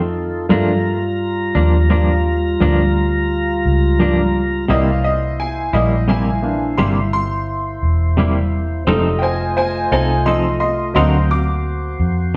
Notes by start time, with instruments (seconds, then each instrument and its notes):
Already playing: fingered electric bass F2, upright piano G3 A3 D#4 C6, tonewheel organ D#4 F4 A4
0.49 clean electric guitar G2 F3 A#3 D4, fingered electric bass G2, tonewheel organ G3 F4 A#5, upright piano A3 A#3 F4
1.55 fingered electric bass D#2, clean electric guitar F3 A#3 D4
1.90 clean electric guitar G2 F3 A#3 D4
2.60 fingered electric bass D2, clean electric guitar G2 F3 A#3 D4
3.65 fingered electric bass C#2
3.99 clean electric guitar G2 F3 A#3 D4
4.68 fingered electric bass C2, clean electric guitar C3 G3 A#3 E4, upright piano E3 A#3 D5 D#5, tonewheel organ A#3 C5 F5
5.04 tonewheel organ A#3 E4 C5, upright piano D#5
5.40 upright piano G#5
5.73 fingered electric bass A#1, clean electric guitar G3 A#3 E4, upright piano D#5
6.08 clean electric guitar C3 G3 A#3 E4, upright piano G#5
6.42 upright piano E3 A#3 D4
6.78 fingered electric bass G1, clean electric guitar C3 G3 A#3 E4, upright piano C6
7.13 upright piano C6
7.83 fingered electric bass E1
8.17 clean electric guitar C3 G3 A#3 E4
8.87 fingered electric bass F1, clean electric guitar F3 C4 D#4 A4, upright piano G3 A3 D#4, tonewheel organ A3 F4 D#5
9.19 upright piano C5 G5
9.23 upright piano G#5
9.57 upright piano C5 G#5
9.92 fingered electric bass C2, clean electric guitar C4 D#4 A4, upright piano C5 G#5
10.26 clean electric guitar F3 C4 D#4 A4, upright piano D#5 C6
10.60 upright piano D#5 C6
10.94 fingered electric bass D2, clean electric guitar D3 C4 F#4 A#4, upright piano F#3 A#3 C4 D#5 C6, tonewheel organ A#3 C5 G5
11.30 tonewheel organ A#3 F#4 C5, upright piano D6
12.00 fingered electric bass F2